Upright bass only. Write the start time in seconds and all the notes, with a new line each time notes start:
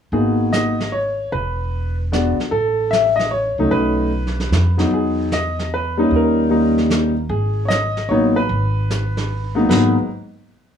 0.12 G#1
1.32 E1
2.39 muted upright bass stroke
2.52 A1
3.58 C2
3.71 B1
4.51 F2
4.91 E2
6.11 D#2
7.29 G#1
8.09 A1
8.49 G#1
9.69 G#1